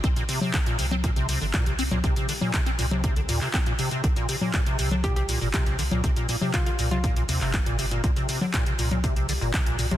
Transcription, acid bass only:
0.04 0.08 C4 loud
0.16 0.23 A#2 loud
0.29 0.39 C3 loud
0.41 0.52 C3 medium
0.54 0.58 D3 medium
0.66 0.77 A#2 loud
0.79 0.86 C3 medium
0.91 0.95 C4 loud
1.04 1.11 A#2 loud
1.16 1.27 C3 loud
1.29 1.39 C3 medium
1.41 1.45 D3 medium
1.54 1.64 A#2 loud
1.66 1.73 C3 medium
1.79 1.83 C4 loud
1.91 1.98 A#2 loud
2.04 2.14 C3 loud
2.16 2.27 C3 medium
2.29 2.33 D3 medium
2.41 2.52 A#2 loud
2.54 2.61 C3 medium
2.66 2.70 C4 loud
2.79 2.86 A#2 loud
2.91 3.02 C3 loud
3.04 3.14 C3 medium
3.16 3.21 D3 medium
3.29 3.39 A#2 loud
3.41 3.48 C3 medium
3.54 3.58 C4 loud
3.66 3.73 A#2 loud
3.79 3.89 C3 loud
3.91 4.02 C3 medium
4.04 4.08 D3 medium
4.16 4.27 A#2 loud
4.29 4.36 C3 medium
4.41 4.52 A#2 medium
4.54 4.61 A#2 loud
4.66 4.77 C3 loud
4.79 4.89 C3 medium
4.91 4.96 D3 medium
5.04 5.14 A#2 loud
5.16 5.23 C3 medium
5.29 5.39 A#2 medium
5.41 5.48 A#2 loud
5.54 5.64 C3 loud
5.66 5.77 C3 medium
5.79 5.83 D3 medium
5.91 6.02 A#2 loud
6.04 6.11 C3 medium
6.16 6.27 A#2 medium
6.29 6.36 A#2 loud
6.41 6.52 C3 loud
6.66 6.71 D3 medium
6.79 6.89 A#2 loud
6.91 6.98 C3 medium
7.04 7.14 A#2 medium
7.16 7.23 A#2 loud
7.29 7.39 C3 loud
7.41 7.52 C3 medium
7.66 7.77 A#2 loud
7.79 7.86 C3 medium
7.91 8.02 A#2 medium
8.04 8.11 A#2 loud
8.16 8.27 C3 loud
8.29 8.39 C3 medium
8.41 8.45 D3 medium
8.54 8.64 A#2 loud
8.66 8.73 C3 medium
8.79 8.89 A#2 medium
8.91 8.98 A#2 loud
9.04 9.14 C3 loud
9.16 9.27 C3 medium
9.29 9.33 D3 medium
9.41 9.52 A#2 loud
9.66 9.77 A#2 medium
9.79 9.86 A#2 loud
9.91 9.97 C3 loud

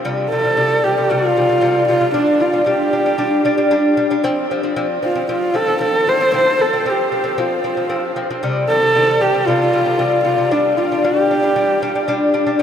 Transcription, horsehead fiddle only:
0.31 0.86 A4 medium
0.84 1.12 G4 medium
1.11 1.88 F4 loud
1.89 2.13 F4 medium
2.16 2.43 D4 medium
2.41 2.67 F4 medium
2.69 3.69 G4 medium
5.04 5.28 F4 medium
5.32 5.58 F4 medium
5.56 5.82 A4 loud
5.83 6.11 A4 medium
6.09 6.34 C5 loud
6.35 6.63 C5 loud
6.61 6.90 A4 medium
6.89 7.41 G4 medium
7.39 8.17 F4 medium
8.69 9.22 A4 loud
9.21 9.48 G4 medium
9.46 10.24 F4 loud
10.25 10.54 F4 medium
10.52 10.79 D4 medium
10.77 11.06 F4 medium
11.04 12.08 G4 medium

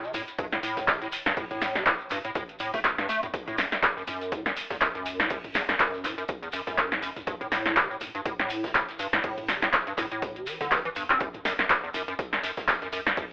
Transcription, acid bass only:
0.03 0.12 C3 loud
0.14 0.22 A2 medium
0.38 0.46 G2 loud
0.52 0.58 A2 loud
0.63 0.89 A2 loud
0.88 0.99 C3 loud
1.02 1.08 A2 medium
1.26 1.32 G2 loud
1.37 1.45 A2 loud
1.51 1.77 A2 loud
1.75 1.84 C3 loud
1.86 1.94 A2 medium
2.11 2.18 G2 loud
2.25 2.31 A2 loud
2.35 2.43 A2 loud
2.60 2.71 A2 loud
2.74 2.80 A3 loud
2.98 3.07 G2 loud
3.09 3.21 A3 loud
3.23 3.26 A2 medium
3.48 3.56 A2 loud
3.58 3.66 F#2 medium
3.83 3.90 E2 loud
3.97 4.03 F#2 loud
4.07 4.34 F#2 loud
4.32 4.44 A2 loud
4.46 4.52 F#2 medium
4.70 4.76 E2 loud
4.81 4.89 F#2 loud
4.95 5.21 F#2 loud
5.20 5.28 A2 loud
5.30 5.38 F#2 medium
5.55 5.63 E2 loud
5.69 5.75 F#2 loud
5.79 6.05 F#2 loud
6.04 6.16 A2 loud
6.18 6.24 F#2 medium
6.42 6.48 E2 loud
6.53 6.61 F#2 loud
6.67 6.93 F#2 loud
6.92 7.01 A2 loud
7.02 7.10 F#2 medium
7.27 7.35 G2 loud
7.41 7.47 A2 loud
7.52 7.78 A2 loud
7.76 7.88 C3 loud
7.90 7.96 A2 medium
8.15 8.21 G2 loud
8.26 8.33 A2 loud
8.39 8.65 A2 loud
8.64 8.73 C3 loud
8.75 8.82 A2 medium
8.99 9.07 G2 loud
9.13 9.19 A2 loud
9.24 9.50 A2 loud
9.48 9.60 C3 loud
9.62 9.68 A2 medium
9.87 9.93 G2 loud
9.98 10.05 A2 loud
10.12 10.38 A2 loud
10.36 10.48 C3 loud
10.47 10.58 E3 medium
10.61 10.73 D3 loud
10.71 10.79 E3 medium
10.85 10.89 E3 loud
10.96 11.04 G2 medium
11.10 11.19 C4 medium
11.21 11.28 F#2 loud
11.45 11.53 F#2 medium
11.59 11.65 F#2 medium
11.84 11.90 E2 loud
11.94 12.02 F#2 loud
12.08 12.14 F#2 loud
12.33 12.39 F#2 medium
12.43 12.51 F#2 medium
12.68 12.76 E2 loud
12.82 12.88 F#2 loud
12.92 13.00 F#2 loud
13.17 13.25 F#2 medium

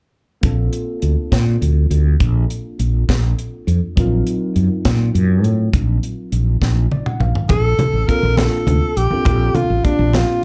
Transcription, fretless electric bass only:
0.43 0.67 A#1 medium
1.02 1.14 D2 medium
1.32 1.56 A#2 medium
1.61 1.85 D2 medium
1.90 2.15 D2 medium
2.20 2.44 A#1 medium
2.79 3.03 A#1 medium
3.09 3.33 A#1 medium
3.67 3.79 F2 medium
3.97 4.21 A#1 medium
4.56 4.68 F#2 medium
4.85 5.09 A#2 medium
5.14 5.43 F#2 medium
5.43 5.68 A2 medium
5.73 5.98 A#1 medium
6.32 6.56 A#1 medium
6.62 6.86 A#1 medium
7.20 7.32 A#1 medium
7.50 7.74 A#1 medium
7.79 muted fretless electric bass stroke soft
7.93 8.06 A1 medium
8.23 8.47 A#1 medium
8.68 8.80 D2 medium
8.96 9.09 A#1 medium
9.12 muted fretless electric bass stroke soft
9.26 9.50 A#1 medium
9.70 9.82 A1 medium
9.99 10.23 A#1 medium

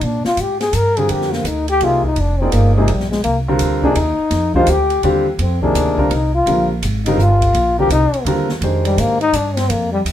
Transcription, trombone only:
0.03 0.25 D4 medium
0.26 0.42 F4 medium
0.41 0.60 G4 medium
0.61 0.77 G#4 medium
0.76 1.00 A#4 loud
0.98 1.12 G#4 medium
1.11 1.33 G4 medium
1.32 1.48 A#3 medium
1.47 1.69 D#4 medium
1.70 1.86 G4 loud
1.84 2.05 F4 medium
2.06 2.21 D#4 medium
2.20 2.42 D4 medium
2.40 2.56 C4 medium
2.54 2.74 A#3 medium
2.75 2.92 G#3 medium
2.91 3.09 G3 medium
3.10 3.23 G#3 medium
3.24 3.38 A#3 medium
3.83 3.98 D4 medium
3.97 4.54 D#4 medium
4.55 4.72 F4 medium
4.70 5.05 G4 medium
5.41 5.62 C4 medium
5.62 6.15 D4 medium
6.13 6.34 D#4 medium
6.34 6.68 F4 loud
7.06 7.22 D#4 medium
7.20 7.79 F4 medium
7.80 7.91 G4 loud
7.92 8.25 D#4 medium
8.86 9.01 G3 loud
9.00 9.20 A#3 medium
9.21 9.37 D#4 loud
9.35 9.58 D4 medium
9.56 9.72 C4 medium
9.70 9.91 A#3 medium
9.92 10.00 G3 medium

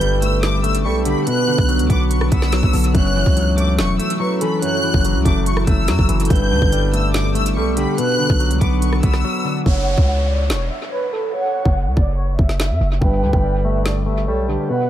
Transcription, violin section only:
0.00 0.18 G6 loud
0.23 0.40 E6 medium
0.43 0.61 D6 medium
0.64 0.82 E6 loud
0.85 1.03 C#6 medium
1.06 1.24 B5 medium
1.27 1.86 F#6 loud
1.90 2.07 D6 medium
2.10 2.28 C#6 medium
2.32 2.91 E6 loud
2.95 3.54 F#6 loud
3.58 3.76 D6 medium
3.79 3.97 C#6 medium
3.99 4.17 E6 medium
4.20 4.38 C#6 medium
4.42 4.59 B5 medium
4.63 5.22 F#6 loud
5.26 5.43 D6 medium
5.46 5.64 C#6 medium
5.68 6.27 E6 medium
6.30 6.89 G6 medium
6.94 7.11 E6 medium
7.14 7.32 D6 medium
7.36 7.53 E6 loud
7.56 7.74 C#6 medium
7.78 7.95 B5 medium
7.99 8.58 F#6 loud
8.61 8.79 D6 medium
8.82 9.00 C#6 medium
9.03 9.62 E6 loud
9.66 10.25 F#5 loud
10.29 10.47 D5 medium
10.50 10.68 C#5 medium
10.70 10.88 E5 medium
10.91 11.09 C#5 medium
11.13 11.31 B4 medium
11.34 11.93 F#5 loud
11.97 12.15 D5 medium
12.18 12.36 C#5 medium
12.39 12.98 E5 medium
13.01 13.61 G5 medium
13.65 13.83 E5 medium
13.86 14.03 D5 medium
14.07 14.24 E5 medium
14.28 14.45 C#5 medium
14.49 14.67 B4 medium
14.70 14.90 F#5 loud

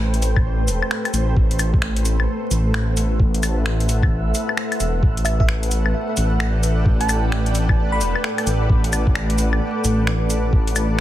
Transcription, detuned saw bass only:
0.00 0.44 A1 loud
0.45 0.69 A1 medium
0.68 0.81 E1 medium
1.13 1.35 A1 medium
1.36 2.27 A1 loud
2.51 3.19 A1 medium
3.19 4.10 A1 loud
4.11 4.33 A1 medium
4.80 5.02 E1 medium
5.03 5.93 A1 loud
6.17 6.85 A1 medium
6.86 7.76 A1 loud
7.78 8.02 A1 medium
8.00 8.14 E1 medium
8.46 8.68 A1 medium
8.70 9.60 A1 loud
9.84 10.52 A1 medium
10.53 11.01 A1 loud

